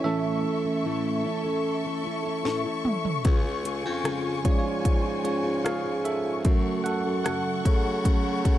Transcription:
Already playing: E5
0.04 A2 E3 A3 C#4 E4 A4 E5 C#6
0.44 A3 C#4 E4 A4
0.65 A3 C#4 E4 A4
0.85 A2 E3 A3 C#4 E4 A4
1.24 A3 C#4 E4 A4
1.44 A3 C#4 E4 A4
1.84 A3 C#4 E4 A4
2.04 A3 C#4 E4 A4
2.24 A3 C#4 E4 A4
2.44 A2 E3 A3 C#4 E4 A4, snare
2.64 A3 C#4 E4 A4
2.85 mid tom
3.05 floor tom
3.24 C#2 C#3 G#3 C#4 F4 G#4 G#5, kick, closed hi-hat
3.43 C#4 F4 G#4
3.63 G#3 C#4 F4 G#4, closed hi-hat
3.84 F2 C#4 F4 G#4
4.04 C#3 G#3 C#4 F4 G#4, cross-stick, closed hi-hat
4.44 G#2 F3 G#3 C#4 F4 G#4 C#5, kick, closed hi-hat
4.50 D5
4.59 F4 C#5
4.64 C#4 F4 G#4
4.85 kick, closed hi-hat
5.03 C#4 F4 G#4
5.24 G#3 C#4 F4 G#4 C#5, closed hi-hat
5.43 C#4 F4 G#4
5.64 C#3 G#3 C#4 F4 G#4 F5, cross-stick, closed hi-hat
5.84 C#4 F4 G#4
6.05 A4 E5, closed hi-hat
6.44 F#2 C#3 F#3 A3 C#4 F#4 A4 F#5 C#6, kick, closed hi-hat
6.84 F#3 A3 F#4 A4 F#5, closed hi-hat
7.04 F#2 F#3 A3 F#4 A4
7.24 F#2 C#3 F#3 A3 F#4 A4 F#5, cross-stick, closed hi-hat
7.64 C#3 F#3 A3 F#4 A4, kick, closed hi-hat
7.84 F#3 A3 F#4 A4
8.04 F#3 A3 C#4, kick, closed hi-hat
8.24 F#3 A3 F#4 A4
8.44 F#3 A3 F#4 A4, kick, closed hi-hat

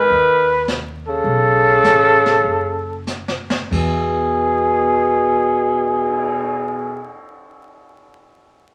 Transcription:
Already playing: D#3 B4
0.10 D#2, brush sweep
0.68 snare, hi-hat pedal
1.08 C#3 A4
1.24 B1, brush sweep
1.83 A1, snare, hi-hat pedal
2.26 snare
2.44 F#1, brush sweep
3.07 snare, hi-hat pedal
3.28 snare
3.50 snare
3.71 E2 B2 G#4, kick, crash
4.17 cymbal swell

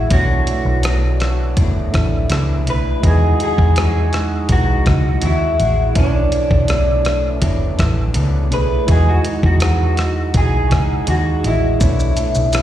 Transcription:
Already playing: G#3 F#4
0.08 B1 B2 E3 A3 D4 E4, kick, closed hi-hat
0.12 A3 D4 F#4 C#5
0.47 E3 A3 D4, closed hi-hat
0.65 B1
0.83 B2 E3 A3 D4, cross-stick, closed hi-hat
1.20 E3 A3 D4, cross-stick, closed hi-hat
1.57 F#1 B2 E3 A3 D4, kick, closed hi-hat
1.92 A1 A3 D4 E4 E5, kick, cross-stick, closed hi-hat
1.97 E3
2.30 C#2 B2 E3 A3 D4, cross-stick, closed hi-hat
2.67 B1 E3 A3 D4 B4, closed hi-hat
3.00 E2 E3 G#3 E4, kick, closed hi-hat
3.04 G#3 D#4 F#4 G#4 D#5
3.40 G#3 D#4 F#4 G#4, closed hi-hat
3.58 E2, kick
3.76 E3 G#3 D#4 F#4, cross-stick, closed hi-hat
4.12 G#3 D#4 F#4, cross-stick, closed hi-hat
4.49 B1 E3 G#3 D#4 F#4, kick, closed hi-hat
4.86 C#2 G#3 D#4 F#4, kick, cross-stick, closed hi-hat
5.22 D#2 G#3 E4 F#4, closed hi-hat
5.58 A1 G#3 F#4, closed hi-hat
5.94 B1 B2 E3 A3 D4 E4, kick, closed hi-hat
5.98 D4 B4
6.05 C#5
6.31 E3 A3 D4, closed hi-hat
6.51 B1, kick
6.68 B2 E3 A3 D4, cross-stick, closed hi-hat
7.04 E3 A3 D4, cross-stick, closed hi-hat
7.34 C#4
7.41 F#1 B2 E3 A3 D4, kick, closed hi-hat
7.77 A1 E3 A3 D4, kick, cross-stick, closed hi-hat
8.13 C#2 B2 E3 A3 D4, closed hi-hat
8.50 B1 E3 A3 D4 E4 G#4 B4, closed hi-hat
8.85 E2 E3 G#3 D#4 E4 F#4, kick, closed hi-hat
8.90 F#4 G#4 D#5
9.09 F#4
9.24 G#3 D#4 F#4, closed hi-hat
9.43 E2 F#4, kick
9.60 E3 G#3 D#4 F#4, cross-stick, closed hi-hat
9.96 G#3 D#4 F#4, cross-stick, closed hi-hat
10.34 B1 E3 G#3 D#4 F#4 G#4, kick, closed hi-hat
10.69 C#2 G#3 D#4 F#4, kick, cross-stick, closed hi-hat
11.07 D#2 G#3 D#4 F#4, closed hi-hat
11.42 A1 G#3 E4 F#4 D#5, closed hi-hat
11.47 E4
11.78 B1 B2 E3 A3 D4 E4, kick, closed hi-hat, shaker
11.83 C#5
12.00 shaker
12.16 E3 A3 D4, closed hi-hat, shaker
12.35 B1, shaker
12.52 B2 E3 A3 D4, cross-stick, closed hi-hat, shaker

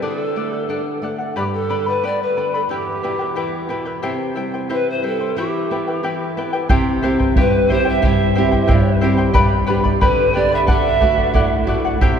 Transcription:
0.02 D3 G#4 A4 D5 F#5
0.19 A4
0.36 A3 A4 D5 F#5
0.52 D5 F#5
0.69 D4 A4 D5 F#5
1.02 A3 A4 D5 F#5
1.19 D5 F#5
1.36 G2 G4 B4 D5 G5 B5
1.54 A4
1.69 D3 B4 D5 G5 B5
1.86 B4 D5 B5
2.04 B3 G4 B4 D5 G5 B5
2.22 B4
2.37 D3 B4 D5 G5 B5
2.54 A4 B4 D5 B5
2.69 E2 E4 G4 B4 E5 G5
3.03 B2 E4 B4 E5 G5
3.19 E4 B4 G5
3.35 E3 E4 G4 B4 E5 G5
3.69 B2 E4 B4 E5 G5
3.85 E4 B4 G5
4.03 C3 E4 G4 C5 E5 G5
4.35 G3 E4 C5 E5 G5
4.54 E4 C5 G5
4.69 E4 G4 B4 C5 E5 G5
4.89 C5
5.03 G3 E4 A4 C5 E5 G5
5.20 E4 C5 G5
5.36 E3 E4 G4 B4 E5 G5
5.71 B3 E4 B4 E5 G5
5.87 E4 B4 G5
6.03 E3 E4 G4 B4 E5 G5
6.37 B3 E4 B4 E5 G5
6.53 E4 B4 G5
6.69 C3 E4 G4 C5 E5 G5, bombo low
7.03 C4 E4 G4 C5 E5 G5
7.20 E4 C5 G5, bombo low
7.36 G2 E4 G4 B4 E5 G5, bombo low
7.69 C4 E4 G4 C5 E5 G5
7.85 E4 C5 E5 G5
8.02 G2 E4 G4 C5 E5 G5, bombo low
8.06 E5
8.35 C4 E4 G4 C5 E5 G5
8.52 E4 C5 G5, bombo low
8.67 G2 E4 G4 C5 E5 G5, bombo low
9.01 C4 E4 G4 C5 E5 G5
9.17 E4 C5 G5
9.33 G2 G4 B4 D5 G5 B5, bombo low
9.67 B3 D4 G4 B4 D5 G5 B5
9.84 B4 D5 B5, bombo low
10.01 D3 G4 B4 D5 G5 B5, bombo low
10.34 B3 D4 G4 B4 D5 G5 B5
10.52 B4 D5 E5 B5
10.67 D3 A4 D5 E5 F#5, bombo low
11.00 A3 D4 F#4 A4 D5 F#5, bombo low
11.18 D5 F#5, bombo low
11.34 A2 A4 D5 F#5, bombo low
11.67 A3 D4 F#4 A4 D5 F#5, bombo low
11.85 D5 F#5
12.01 C3 E4 G4 C5 E5 G5, bombo low

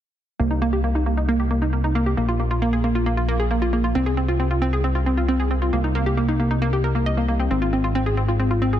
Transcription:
0.40 C2 A#3
0.51 D#4
0.62 A#3
0.73 G4
0.84 A#3
0.95 D#4
1.06 A#3
1.17 D#4
1.29 A#3
1.40 G4
1.51 A#3
1.62 D#4
1.73 A#3
1.84 D#4
1.95 A#3
2.06 G4
2.17 A#1 A#3
2.29 F4
2.40 A#3
2.51 F4
2.62 A#3
2.73 G#4
2.84 A#3
2.95 F4
3.06 A#3
3.17 F4
3.29 A#3
3.40 G#4
3.51 A#3
3.62 F4
3.73 A#3
3.84 F4
3.95 C2 C4
4.06 G#4
4.17 C4
4.28 F4
4.40 C4
4.51 F4
4.62 C4
4.73 G#4
4.84 C4
4.95 F4
5.06 C4
5.17 F4
5.28 C4
5.40 G#4
5.51 C4
5.62 F4
5.73 C2 A#3
5.84 D#4
5.95 A#3
6.06 G4
6.17 A#3
6.29 D#4
6.40 A#3
6.51 D#4
6.62 A#3
6.73 G4
6.84 A#4
6.95 A#3
7.06 D#5
7.17 A#3
7.28 A#3
7.40 C4
7.51 G#1 C4
7.62 F4
7.73 C4
7.84 F4
7.95 C4
8.06 G#4
8.17 C4
8.29 F4
8.40 C4
8.51 F4
8.62 C4
8.73 G#4

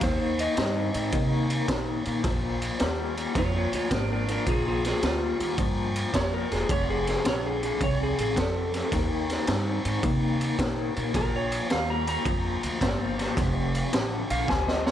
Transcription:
0.01 D#2 D#3 A#3 C5, kick, snare, ride
0.39 D#5, ride
0.57 G2 D#3 C4, snare, ride
0.94 G#2 D#3 C4, ride
1.12 C3 D#3 A#3, kick, ride
1.50 ride
1.68 A#2 D#3 A#3, kick, snare, ride
2.05 A#2 D#3 A#3, ride
2.24 A#1 A#2 F3, kick, snare, ride
2.62 ride
2.79 D#2 A#2 G3, snare, ride
3.17 A#2 G3, ride
3.35 F2 A#2 F3 F4 C#5, kick, snare, ride
3.56 F4 C#5
3.73 D2 F4 C#5, ride
3.91 G#1 A#2 F3 D4 A#4, kick, snare, ride
4.12 D4 A#4
4.28 A#2 F3 D4 A#4, ride
4.46 A#1 A#2 F3 F4 G#4, kick, ride
4.68 F4 G#4
4.85 F4 G#4, snare, ride
5.02 D2 A#2 G3 F4, snare, ride
5.40 D#2 A#2 G3, ride
5.57 G2 A#2 F3, kick, ride
5.96 ride
6.13 F2 A#2 F3 C#5, kick, snare, ride
6.34 A#4
6.51 E1 A#2 F3 G#4, snare, ride
6.69 F1 F2 C3 C#5, kick, ride
6.90 G#4
7.07 G#4, snare, ride
7.25 A#1 F2 D3 C#5, snare, ride
7.46 G#4
7.62 F2 D3 G#4, ride
7.81 C2 F2 C3 C#5, kick, ride
8.03 G#4
8.18 A1 G#4, ride
8.36 F2 C3 A4, kick, snare, ride
8.74 F2 C3, snare, ride
8.92 D#2 D#3 A#3, kick, snare, ride
9.29 snare, ride
9.47 G2 D#3 C4, snare, ride
9.85 G#2 D#3 C4, ride
10.03 C3 D#3 A#3, kick, ride
10.41 ride
10.59 A#2 D#3 A#3, kick, snare, ride
10.96 A#2 D#3 A#3, ride
11.14 A#1 A#2 F3 A#4, kick, snare, ride
11.36 C#5
11.52 ride
11.70 D#2 A#2 G3 F5, snare, ride
11.90 A#5
12.07 A#2 G3 A#5, ride
12.25 F2 A#2 F3, kick, ride
12.63 D2, ride
12.81 G1 A#2 F3, kick, snare, ride
13.18 A#2 F3, snare, ride
13.36 F1 F2 C3, kick, snare, ride
13.75 ride
13.93 A1 F2 D3, snare, ride
14.30 A#1 F2 D3 F5, ride
14.48 D2 F2 C3 G#5, kick, snare
14.68 D#5, snare
14.86 C#5, snare

